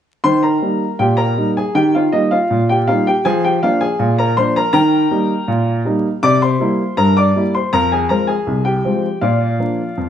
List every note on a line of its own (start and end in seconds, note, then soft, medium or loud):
0.24 0.56 D#3 medium
0.24 0.42 C5 medium
0.24 0.43 C6 loud
0.43 0.96 A#4 soft
0.43 0.88 A#5 medium
0.62 0.83 G3 soft
0.62 0.83 A#3 soft
0.62 0.83 D#4 soft
0.99 1.31 A#2 medium
0.99 1.18 G4 medium
0.99 1.18 G5 medium
1.17 1.53 A#4 medium
1.17 1.47 A#5 medium
1.37 1.58 G3 soft
1.37 1.58 A#3 soft
1.37 1.58 D#4 soft
1.57 1.75 G#4 medium
1.57 1.75 G#5 medium
1.75 2.07 D#3 medium
1.75 1.93 G4 medium
1.75 1.94 G5 medium
1.95 2.12 F4 medium
1.95 2.13 F5 medium
2.12 2.33 G3 soft
2.12 2.33 A#3 soft
2.12 2.30 D#4 medium
2.12 2.31 D#5 medium
2.31 2.66 F4 medium
2.31 2.61 F5 medium
2.50 2.82 A#2 medium
2.69 2.87 G4 medium
2.69 2.88 G5 medium
2.87 3.08 G3 soft
2.87 3.08 A#3 soft
2.87 3.08 D#4 soft
2.87 3.06 F4 medium
2.87 3.06 F5 medium
3.07 3.25 G4 medium
3.07 3.25 G5 medium
3.25 3.57 F3 medium
3.25 3.43 G#4 medium
3.25 3.43 G#5 loud
3.44 3.62 G4 medium
3.44 3.62 G5 medium
3.63 3.83 F3 soft
3.63 3.83 A#3 soft
3.63 3.84 D4 medium
3.63 3.80 F4 medium
3.63 3.81 F5 medium
3.81 4.16 G#4 medium
3.81 4.10 G#5 medium
3.99 4.31 A#2 medium
4.18 4.36 A#4 medium
4.18 4.37 A#5 medium
4.37 4.58 F3 soft
4.37 4.58 A#3 soft
4.37 4.58 D4 medium
4.37 4.55 C5 medium
4.37 4.55 C6 medium
4.56 4.72 A#4 medium
4.56 4.71 A#5 medium
4.73 5.05 D#3 medium
4.73 5.82 A#4 medium
4.73 5.82 G5 medium
4.73 5.81 A#5 loud
5.11 5.32 G3 medium
5.11 5.31 A#3 medium
5.11 5.32 D#4 medium
5.48 5.80 A#2 medium
5.85 6.06 G3 soft
5.85 6.06 A#3 medium
5.85 6.06 D#4 medium
6.23 6.55 C3 medium
6.23 6.41 D5 medium
6.23 6.42 D6 loud
6.42 6.94 C5 medium
6.42 6.95 C6 medium
6.60 6.80 G3 medium
6.60 6.81 A#3 medium
6.60 6.81 E4 medium
6.97 7.29 G2 medium
6.97 7.15 A#4 medium
6.97 7.16 A#5 loud
7.17 7.52 D5 medium
7.17 7.52 D6 medium
7.36 7.56 G3 medium
7.36 7.56 A#3 soft
7.36 7.57 E4 medium
7.55 7.72 C5 medium
7.55 7.73 C6 medium
7.73 8.05 F2 medium
7.73 7.91 A#4 medium
7.73 7.91 A#5 loud
7.92 8.10 G#4 medium
7.92 8.10 G#5 medium
8.09 8.30 F3 soft
8.09 8.31 G#3 soft
8.09 8.31 C4 medium
8.09 8.28 A#4 medium
8.09 8.28 A#5 medium
8.27 8.63 G#4 medium
8.27 8.63 G#5 medium
8.47 8.79 C2 medium
8.65 9.18 G4 medium
8.65 9.19 G5 medium
8.85 9.05 F3 soft
8.85 9.05 G#3 soft
8.85 9.06 C4 soft
9.21 9.54 A#2 medium
9.21 10.09 F4 medium
9.21 10.09 D5 medium
9.21 10.09 F5 medium
9.59 9.80 F3 soft
9.59 9.80 A#3 soft
9.59 9.81 D4 soft
9.97 10.09 F2 medium